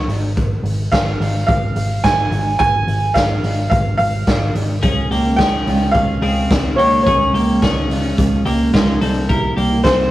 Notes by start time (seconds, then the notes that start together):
0.08 G#1, open hi-hat
0.37 kick, closed hi-hat
0.64 G#1, open hi-hat
0.92 G#1 F5, kick, snare, closed hi-hat
1.20 G#1, open hi-hat
1.47 G#1 F5, kick, closed hi-hat
1.76 G#1, open hi-hat
2.04 G#1 G#5, kick, snare, closed hi-hat
2.31 G#1, open hi-hat
2.59 G#1 G#5, kick, closed hi-hat
2.87 G#1, open hi-hat
3.14 G#1 F5, kick, snare, closed hi-hat
3.43 G#1, open hi-hat
3.70 G#1 F5, kick, closed hi-hat
3.98 G#1 F5, open hi-hat
4.27 G#1, kick, snare, closed hi-hat
4.55 G#1, open hi-hat
4.82 C#2 C#3 G#3 C#4 F4 G#4, kick, closed hi-hat
5.11 C#2 A#3 G4, open hi-hat
5.26 G#3 C#4 F4
5.36 C#2 C#4 G#4 G5, kick, snare, closed hi-hat
5.67 C#2 C#3 G#3 C#4 F4, open hi-hat
5.91 C#2 C#3 G#3 C#4 F4 F5, kick, closed hi-hat
6.22 C#2 C4 G#4, open hi-hat
6.50 C#2 C#3 G#3 C#4 F4, kick, snare, closed hi-hat
6.76 C#2 C#3 G#3 A#3 C#4 G4 C#5, open hi-hat
7.03 C#2 C#5, kick
7.07 C#3 G#3 C#4 F4 G#4, closed hi-hat
7.34 C#2 A#3 G4, open hi-hat
7.49 G#3 C#4 F4
7.62 C#2 C#4 G#4, kick, snare, closed hi-hat
7.89 C#2 C#3 G#3 C#4 F4, open hi-hat
8.17 C#2 C#3 G#3 C#4 F4, kick, closed hi-hat
8.45 C#2 A#3 G4, open hi-hat
8.73 C#2 C#3 G#3 C#4 F4, kick, snare, closed hi-hat
9.01 C2 C3 G3 A#3 C4 E4 A4, open hi-hat
9.29 C3 G3 A#3 E4 A#4, kick, closed hi-hat
9.57 C2 A#3 G4, open hi-hat
9.71 G3 A#3 E4
9.84 C2 C4 A4 C5, kick, snare, closed hi-hat